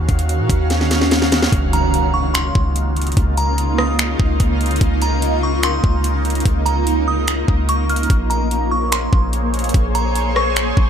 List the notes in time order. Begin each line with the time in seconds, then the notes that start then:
Already playing: D#3 C#4 F#4 F5
0.09 D#2, kick, closed hi-hat
0.19 closed hi-hat
0.29 closed hi-hat
0.39 A#2
0.50 D#2, kick, closed hi-hat
0.70 snare, closed hi-hat
0.81 snare
0.91 snare, closed hi-hat
1.01 snare
1.11 snare, closed hi-hat
1.22 snare
1.32 snare, closed hi-hat
1.43 snare
1.52 C#2 C#3 A#3 D#4 F4, kick, closed hi-hat, impact
1.73 A#5, closed hi-hat
1.94 closed hi-hat
2.14 C#6
2.34 C6, finger snap, closed hi-hat
2.55 C#2, kick
2.76 closed hi-hat
2.97 closed hi-hat
3.02 closed hi-hat
3.07 closed hi-hat
3.12 closed hi-hat
3.17 C#2, kick, closed hi-hat
3.37 A#5, closed hi-hat
3.58 closed hi-hat
3.78 D#6, cross-stick
3.99 finger snap, closed hi-hat
4.20 C#2, kick
4.40 C#2, kick, closed hi-hat
4.61 closed hi-hat
4.66 closed hi-hat
4.71 closed hi-hat
4.76 closed hi-hat
4.81 C#2, kick, closed hi-hat
5.02 A#5, closed hi-hat
5.22 closed hi-hat
5.43 C#6
5.63 C6, finger snap, closed hi-hat
5.84 C#2, kick
6.04 closed hi-hat
6.25 closed hi-hat
6.30 closed hi-hat
6.35 closed hi-hat
6.40 closed hi-hat
6.46 C#2, kick, closed hi-hat
6.66 A#5, closed hi-hat
6.87 closed hi-hat
7.08 D#6
7.28 finger snap, closed hi-hat
7.48 C#2, kick
7.69 C#6, closed hi-hat
7.89 F6, closed hi-hat
7.96 closed hi-hat
8.03 closed hi-hat
8.10 A#1 G#4 C5 C#5, kick, closed hi-hat
8.30 A#5, closed hi-hat
8.51 closed hi-hat
8.71 C#6
8.92 C6, finger snap, closed hi-hat
9.13 A#1, kick
9.33 closed hi-hat
9.54 closed hi-hat
9.59 closed hi-hat
9.64 closed hi-hat
9.69 closed hi-hat
9.74 A#1, kick, closed hi-hat
9.95 A#5, closed hi-hat
10.15 closed hi-hat
10.36 C#6, cross-stick
10.56 finger snap, closed hi-hat
10.77 A#1, kick